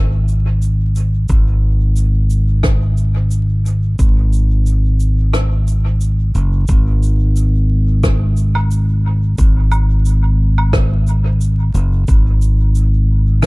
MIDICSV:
0, 0, Header, 1, 3, 480
1, 0, Start_track
1, 0, Tempo, 674157
1, 922, Time_signature, 4, 2, 24, 8
1, 9585, End_track
2, 0, Start_track
2, 0, Title_t, "Fingered electric bass"
2, 0, Program_c, 0, 33
2, 0, Note_on_c, 0, 32, 92
2, 901, Note_off_c, 0, 32, 0
2, 921, Note_on_c, 0, 32, 91
2, 2821, Note_off_c, 0, 32, 0
2, 2842, Note_on_c, 0, 32, 93
2, 4516, Note_off_c, 0, 32, 0
2, 4520, Note_on_c, 0, 30, 95
2, 4735, Note_off_c, 0, 30, 0
2, 4761, Note_on_c, 0, 32, 97
2, 6660, Note_off_c, 0, 32, 0
2, 6681, Note_on_c, 0, 32, 96
2, 8357, Note_off_c, 0, 32, 0
2, 8362, Note_on_c, 0, 30, 97
2, 8576, Note_off_c, 0, 30, 0
2, 8602, Note_on_c, 0, 32, 95
2, 9585, Note_off_c, 0, 32, 0
2, 9585, End_track
3, 0, Start_track
3, 0, Title_t, "Drums"
3, 200, Note_on_c, 9, 82, 42
3, 271, Note_off_c, 9, 82, 0
3, 441, Note_on_c, 9, 82, 63
3, 512, Note_off_c, 9, 82, 0
3, 681, Note_on_c, 9, 82, 44
3, 752, Note_off_c, 9, 82, 0
3, 915, Note_on_c, 9, 82, 59
3, 922, Note_on_c, 9, 36, 98
3, 986, Note_off_c, 9, 82, 0
3, 993, Note_off_c, 9, 36, 0
3, 1396, Note_on_c, 9, 82, 58
3, 1468, Note_off_c, 9, 82, 0
3, 1638, Note_on_c, 9, 82, 48
3, 1709, Note_off_c, 9, 82, 0
3, 1875, Note_on_c, 9, 37, 86
3, 1881, Note_on_c, 9, 82, 59
3, 1882, Note_on_c, 9, 36, 92
3, 1946, Note_off_c, 9, 37, 0
3, 1952, Note_off_c, 9, 82, 0
3, 1953, Note_off_c, 9, 36, 0
3, 2117, Note_on_c, 9, 82, 45
3, 2189, Note_off_c, 9, 82, 0
3, 2356, Note_on_c, 9, 82, 66
3, 2427, Note_off_c, 9, 82, 0
3, 2605, Note_on_c, 9, 82, 43
3, 2676, Note_off_c, 9, 82, 0
3, 2840, Note_on_c, 9, 82, 67
3, 2842, Note_on_c, 9, 36, 101
3, 2911, Note_off_c, 9, 82, 0
3, 2913, Note_off_c, 9, 36, 0
3, 3081, Note_on_c, 9, 82, 47
3, 3152, Note_off_c, 9, 82, 0
3, 3320, Note_on_c, 9, 82, 65
3, 3391, Note_off_c, 9, 82, 0
3, 3559, Note_on_c, 9, 82, 46
3, 3630, Note_off_c, 9, 82, 0
3, 3798, Note_on_c, 9, 37, 89
3, 3803, Note_on_c, 9, 82, 63
3, 3869, Note_off_c, 9, 37, 0
3, 3874, Note_off_c, 9, 82, 0
3, 4041, Note_on_c, 9, 82, 46
3, 4112, Note_off_c, 9, 82, 0
3, 4277, Note_on_c, 9, 82, 60
3, 4348, Note_off_c, 9, 82, 0
3, 4520, Note_on_c, 9, 82, 41
3, 4591, Note_off_c, 9, 82, 0
3, 4753, Note_on_c, 9, 82, 61
3, 4762, Note_on_c, 9, 36, 102
3, 4824, Note_off_c, 9, 82, 0
3, 4833, Note_off_c, 9, 36, 0
3, 5003, Note_on_c, 9, 82, 45
3, 5074, Note_off_c, 9, 82, 0
3, 5242, Note_on_c, 9, 82, 66
3, 5313, Note_off_c, 9, 82, 0
3, 5722, Note_on_c, 9, 36, 102
3, 5722, Note_on_c, 9, 37, 83
3, 5722, Note_on_c, 9, 82, 70
3, 5793, Note_off_c, 9, 36, 0
3, 5793, Note_off_c, 9, 37, 0
3, 5793, Note_off_c, 9, 82, 0
3, 5957, Note_on_c, 9, 82, 44
3, 6028, Note_off_c, 9, 82, 0
3, 6088, Note_on_c, 9, 77, 62
3, 6159, Note_off_c, 9, 77, 0
3, 6201, Note_on_c, 9, 82, 71
3, 6272, Note_off_c, 9, 82, 0
3, 6679, Note_on_c, 9, 82, 69
3, 6681, Note_on_c, 9, 36, 109
3, 6750, Note_off_c, 9, 82, 0
3, 6752, Note_off_c, 9, 36, 0
3, 6917, Note_on_c, 9, 82, 50
3, 6918, Note_on_c, 9, 77, 58
3, 6988, Note_off_c, 9, 82, 0
3, 6989, Note_off_c, 9, 77, 0
3, 7157, Note_on_c, 9, 82, 67
3, 7228, Note_off_c, 9, 82, 0
3, 7533, Note_on_c, 9, 77, 55
3, 7604, Note_off_c, 9, 77, 0
3, 7641, Note_on_c, 9, 37, 96
3, 7642, Note_on_c, 9, 36, 107
3, 7643, Note_on_c, 9, 82, 71
3, 7712, Note_off_c, 9, 37, 0
3, 7713, Note_off_c, 9, 36, 0
3, 7715, Note_off_c, 9, 82, 0
3, 7882, Note_on_c, 9, 82, 45
3, 7954, Note_off_c, 9, 82, 0
3, 8122, Note_on_c, 9, 82, 68
3, 8193, Note_off_c, 9, 82, 0
3, 8363, Note_on_c, 9, 82, 51
3, 8434, Note_off_c, 9, 82, 0
3, 8598, Note_on_c, 9, 82, 64
3, 8602, Note_on_c, 9, 36, 110
3, 8669, Note_off_c, 9, 82, 0
3, 8673, Note_off_c, 9, 36, 0
3, 8840, Note_on_c, 9, 82, 50
3, 8911, Note_off_c, 9, 82, 0
3, 9078, Note_on_c, 9, 82, 67
3, 9149, Note_off_c, 9, 82, 0
3, 9558, Note_on_c, 9, 37, 87
3, 9560, Note_on_c, 9, 82, 69
3, 9563, Note_on_c, 9, 36, 108
3, 9585, Note_off_c, 9, 36, 0
3, 9585, Note_off_c, 9, 37, 0
3, 9585, Note_off_c, 9, 82, 0
3, 9585, End_track
0, 0, End_of_file